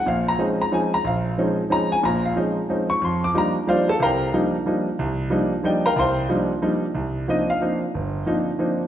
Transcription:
X:1
M:3/4
L:1/8
Q:"Swing" 1/4=183
K:Fphr
V:1 name="Grand piano"
f b z b a b | f z3 b a | b f z3 d' | c' =d' b z [Fc=df] [=A=a] |
[Bf=gb]2 z4 | z4 [=G=de=g] [Bfgb] | [cf=gc']2 z4 | [K:Cm] z2 e f2 z |
z6 |]
V:2 name="Grand piano"
[B,,,B,,]2 [F,A,CDE] z [F,A,CDE] z | B,,,2 [F,A,CDE] z [F,A,CDE] z | [B,,,B,,]2 [F,A,CDE] z [F,A,CDE] z | F,,2 [F,=G,B,=DE] z [F,G,B,DE] z |
[C,,C,]2 [F,=G,B,=DE] z [F,G,B,DE] z | C,,2 [F,=G,B,=DE] z [F,G,B,DE] z | C,,2 [F,=G,B,=DE] z [F,G,B,DE] z | [K:Cm] C,,2 [F,B,CDE] z [F,B,CDE] z |
G,,,2 [F,B,CDE] z [F,B,CDE] z |]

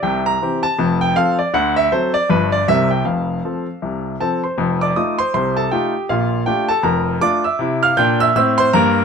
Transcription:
X:1
M:4/4
L:1/8
Q:"Swing" 1/4=159
K:F
V:1 name="Grand piano"
g b2 a2 g f d | ^f e c d =B d e g | f6 a [cc']- | [cc'] [dd'] [_e_e'] [cc'] [cc'] [Aa] [Gg]2 |
[Ff]2 [Gg] [Aa] [Bb]2 [dd'] [ee']- | [ee'] [ff'] [gg'] [ee'] [ee'] [cc'] [Bb]2 |]
V:2 name="Grand piano" clef=bass
[C,,C,]2 [E,CG]2 [F,,,F,,]2 [F,CA]2 | [D,,D,]2 [^F,CA]2 [G,,,G,,=F,DG]2 [C,,C,G,CB]2 | [F,,,F,,]2 [F,CA]2 [C,,C,]2 [F,CA]2 | [F,,,F,,]2 [A,_EF]2 [C,,C,]2 [A,EF]2 |
[B,,,B,,]2 [A,DF]2 [F,,,F,,]2 [A,DF]2 | [C,E]2 [B,,D]2 [A,,C]2 [G,,B,]2 |]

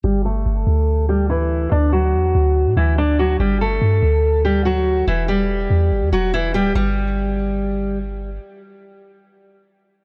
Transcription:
X:1
M:4/4
L:1/16
Q:1/4=143
K:Em
V:1 name="Steel-string acoustic guitar"
[G,G]2 [A,A]8 [G,G]2 [E,E]4 | [Dd]2 [F,F]8 [E,E]2 [Dd]2 [F,F]2 | [G,G]2 [A,A]8 [G,G]2 [F,F]4 | [E,E]2 [G,G]8 [F,F]2 [E,E]2 [G,G]2 |
G,12 z4 | z16 |]
V:2 name="808-style bass" clef=bass
G,,,4 G,,,2 D,,8- D,,2 | D,,4 E,,2 D,,3 A,, D,,6 | G,,,4 G,,2 D,,8- D,,2 | E,,,6 E,,2 G,,, E,, E,,,4 D,,,2 |
G,,,16 | z16 |]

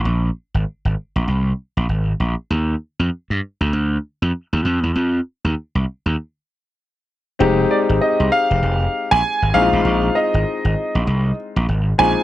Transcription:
X:1
M:4/4
L:1/16
Q:"Swing 16ths" 1/4=98
K:Fdor
V:1 name="Grand piano"
z16 | z16 | z16 | z2 d2 e2 f4- f a3 f2- |
f2 e8 z4 a2 |]
V:2 name="Grand piano"
z16 | z16 | z16 | [A,CEG]4 z8 z2 [A,CE=EF]2- |
[A,CE=EF]4 z8 z2 [A,C_EF]2 |]
V:3 name="Slap bass" clef=bass
B,,,2 z A,,, z A,,, z B,,, C,,2 z B,,, A,,,2 B,,, z | E,,2 z F,, z G,, z D,, D,,2 z F,, z E,, F,, =E,, | F,,2 z E,, z C,, z E,, z8 | F,,,2 z A,,, z C,, z F,,, F,,,2 z B,,, z A,,, B,,, =A,,, |
B,,,2 z A,,, z A,,, z B,,, C,,2 z B,,, A,,,2 B,,, z |]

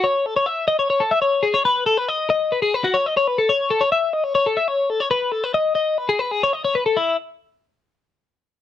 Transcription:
X:1
M:4/4
L:1/16
Q:1/4=139
K:G#phr
V:1 name="Clean electric guitar"
c2 A c e2 d c c A e c2 G c B- | B A B d2 d2 B G B F c d c B A | c2 A c e2 d c c A e c2 A c B- | B A B d2 d2 B G B G c d c B A |
E2 z12 z2 |]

